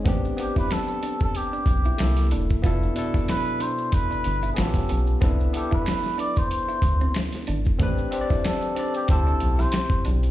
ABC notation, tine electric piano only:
X:1
M:4/4
L:1/8
Q:"Swing 16ths" 1/4=93
K:Am
V:1 name="Tine electric piano"
[B,CDG] [B,CDG]3 z2 [A,_B,EA]2 | [B,DEA] [B,,DEA]3 z2 [B,^CF^FG]2 | [B,DEA] [B,DEA]3 z4 | [CDGB] [CDGcd]2 [CDGd] [CEGc]3 z |]